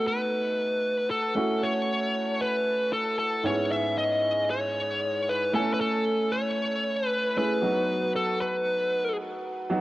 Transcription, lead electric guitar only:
0, 0, Header, 1, 2, 480
1, 0, Start_track
1, 0, Tempo, 521739
1, 1254, Time_signature, 4, 2, 24, 8
1, 9023, End_track
2, 0, Start_track
2, 0, Title_t, "Lead electric guitar"
2, 0, Program_c, 0, 29
2, 69, Note_on_c, 0, 71, 91
2, 1013, Note_off_c, 0, 71, 0
2, 1017, Note_on_c, 0, 69, 87
2, 1499, Note_on_c, 0, 73, 93
2, 1510, Note_off_c, 0, 69, 0
2, 2217, Note_on_c, 0, 71, 93
2, 2238, Note_off_c, 0, 73, 0
2, 2692, Note_off_c, 0, 71, 0
2, 2695, Note_on_c, 0, 69, 88
2, 2924, Note_off_c, 0, 69, 0
2, 2935, Note_on_c, 0, 69, 81
2, 3179, Note_on_c, 0, 73, 104
2, 3182, Note_off_c, 0, 69, 0
2, 3415, Note_off_c, 0, 73, 0
2, 3419, Note_on_c, 0, 76, 98
2, 3657, Note_off_c, 0, 76, 0
2, 3660, Note_on_c, 0, 75, 97
2, 4140, Note_off_c, 0, 75, 0
2, 4144, Note_on_c, 0, 73, 102
2, 4869, Note_on_c, 0, 71, 91
2, 4880, Note_off_c, 0, 73, 0
2, 5098, Note_off_c, 0, 71, 0
2, 5102, Note_on_c, 0, 69, 97
2, 5275, Note_off_c, 0, 69, 0
2, 5278, Note_on_c, 0, 71, 67
2, 5338, Note_off_c, 0, 71, 0
2, 5343, Note_on_c, 0, 69, 87
2, 5814, Note_on_c, 0, 73, 97
2, 5833, Note_off_c, 0, 69, 0
2, 6504, Note_off_c, 0, 73, 0
2, 6504, Note_on_c, 0, 71, 97
2, 6788, Note_off_c, 0, 71, 0
2, 6788, Note_on_c, 0, 71, 92
2, 7464, Note_off_c, 0, 71, 0
2, 7505, Note_on_c, 0, 69, 91
2, 7738, Note_off_c, 0, 69, 0
2, 7741, Note_on_c, 0, 71, 83
2, 8421, Note_off_c, 0, 71, 0
2, 9023, End_track
0, 0, End_of_file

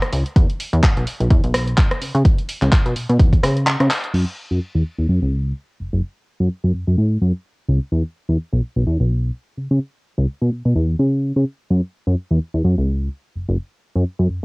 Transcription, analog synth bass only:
0, 0, Header, 1, 2, 480
1, 0, Start_track
1, 0, Key_signature, 3, "minor"
1, 0, Tempo, 472441
1, 368, Time_signature, 4, 2, 24, 8
1, 14680, End_track
2, 0, Start_track
2, 0, Title_t, "Analog synth bass"
2, 0, Program_c, 0, 38
2, 127, Note_on_c, 0, 37, 91
2, 238, Note_off_c, 0, 37, 0
2, 365, Note_on_c, 0, 40, 98
2, 476, Note_off_c, 0, 40, 0
2, 742, Note_on_c, 0, 40, 98
2, 828, Note_off_c, 0, 40, 0
2, 983, Note_on_c, 0, 35, 86
2, 1069, Note_off_c, 0, 35, 0
2, 1222, Note_on_c, 0, 35, 78
2, 1308, Note_off_c, 0, 35, 0
2, 1326, Note_on_c, 0, 40, 105
2, 1437, Note_off_c, 0, 40, 0
2, 1460, Note_on_c, 0, 35, 88
2, 1776, Note_off_c, 0, 35, 0
2, 2047, Note_on_c, 0, 49, 41
2, 2155, Note_off_c, 0, 49, 0
2, 2180, Note_on_c, 0, 49, 84
2, 2267, Note_off_c, 0, 49, 0
2, 2660, Note_on_c, 0, 37, 96
2, 2747, Note_off_c, 0, 37, 0
2, 2903, Note_on_c, 0, 47, 85
2, 2989, Note_off_c, 0, 47, 0
2, 3005, Note_on_c, 0, 47, 43
2, 3114, Note_off_c, 0, 47, 0
2, 3144, Note_on_c, 0, 47, 81
2, 3229, Note_off_c, 0, 47, 0
2, 3486, Note_on_c, 0, 49, 84
2, 3822, Note_off_c, 0, 49, 0
2, 3861, Note_on_c, 0, 49, 83
2, 3948, Note_off_c, 0, 49, 0
2, 4204, Note_on_c, 0, 42, 93
2, 4316, Note_off_c, 0, 42, 0
2, 4582, Note_on_c, 0, 42, 93
2, 4668, Note_off_c, 0, 42, 0
2, 4824, Note_on_c, 0, 40, 81
2, 4909, Note_off_c, 0, 40, 0
2, 5063, Note_on_c, 0, 40, 73
2, 5149, Note_off_c, 0, 40, 0
2, 5169, Note_on_c, 0, 42, 95
2, 5279, Note_off_c, 0, 42, 0
2, 5303, Note_on_c, 0, 37, 79
2, 5617, Note_off_c, 0, 37, 0
2, 5891, Note_on_c, 0, 30, 39
2, 5997, Note_off_c, 0, 30, 0
2, 6024, Note_on_c, 0, 30, 82
2, 6109, Note_off_c, 0, 30, 0
2, 6503, Note_on_c, 0, 42, 95
2, 6589, Note_off_c, 0, 42, 0
2, 6744, Note_on_c, 0, 42, 77
2, 6829, Note_off_c, 0, 42, 0
2, 6847, Note_on_c, 0, 42, 41
2, 6955, Note_off_c, 0, 42, 0
2, 6984, Note_on_c, 0, 42, 71
2, 7069, Note_off_c, 0, 42, 0
2, 7089, Note_on_c, 0, 45, 76
2, 7290, Note_off_c, 0, 45, 0
2, 7330, Note_on_c, 0, 42, 90
2, 7439, Note_off_c, 0, 42, 0
2, 7807, Note_on_c, 0, 37, 89
2, 7917, Note_off_c, 0, 37, 0
2, 8045, Note_on_c, 0, 40, 93
2, 8157, Note_off_c, 0, 40, 0
2, 8420, Note_on_c, 0, 40, 89
2, 8507, Note_off_c, 0, 40, 0
2, 8662, Note_on_c, 0, 35, 79
2, 8748, Note_off_c, 0, 35, 0
2, 8902, Note_on_c, 0, 35, 77
2, 8988, Note_off_c, 0, 35, 0
2, 9009, Note_on_c, 0, 40, 98
2, 9119, Note_off_c, 0, 40, 0
2, 9144, Note_on_c, 0, 35, 79
2, 9458, Note_off_c, 0, 35, 0
2, 9728, Note_on_c, 0, 49, 39
2, 9835, Note_off_c, 0, 49, 0
2, 9863, Note_on_c, 0, 49, 82
2, 9949, Note_off_c, 0, 49, 0
2, 10343, Note_on_c, 0, 37, 90
2, 10429, Note_off_c, 0, 37, 0
2, 10583, Note_on_c, 0, 47, 81
2, 10669, Note_off_c, 0, 47, 0
2, 10824, Note_on_c, 0, 47, 76
2, 10909, Note_off_c, 0, 47, 0
2, 10928, Note_on_c, 0, 40, 74
2, 11129, Note_off_c, 0, 40, 0
2, 11168, Note_on_c, 0, 49, 77
2, 11503, Note_off_c, 0, 49, 0
2, 11543, Note_on_c, 0, 49, 75
2, 11629, Note_off_c, 0, 49, 0
2, 11891, Note_on_c, 0, 42, 93
2, 12000, Note_off_c, 0, 42, 0
2, 12263, Note_on_c, 0, 42, 91
2, 12349, Note_off_c, 0, 42, 0
2, 12505, Note_on_c, 0, 40, 80
2, 12590, Note_off_c, 0, 40, 0
2, 12743, Note_on_c, 0, 40, 75
2, 12829, Note_off_c, 0, 40, 0
2, 12847, Note_on_c, 0, 42, 98
2, 12957, Note_off_c, 0, 42, 0
2, 12984, Note_on_c, 0, 37, 77
2, 13298, Note_off_c, 0, 37, 0
2, 13567, Note_on_c, 0, 30, 37
2, 13675, Note_off_c, 0, 30, 0
2, 13701, Note_on_c, 0, 30, 87
2, 13788, Note_off_c, 0, 30, 0
2, 14179, Note_on_c, 0, 42, 93
2, 14267, Note_off_c, 0, 42, 0
2, 14419, Note_on_c, 0, 42, 83
2, 14507, Note_off_c, 0, 42, 0
2, 14525, Note_on_c, 0, 42, 41
2, 14634, Note_off_c, 0, 42, 0
2, 14680, End_track
0, 0, End_of_file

